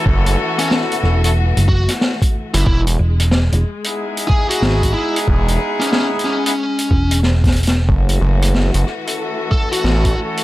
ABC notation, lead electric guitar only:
X:1
M:4/4
L:1/16
Q:"Swing 16ths" 1/4=92
K:F#dor
V:1 name="Lead electric guitar"
z3 C z6 F z4 E | E z8 z G F3 E z | z3 C C z C6 z4 | z8 z2 A F3 z2 |]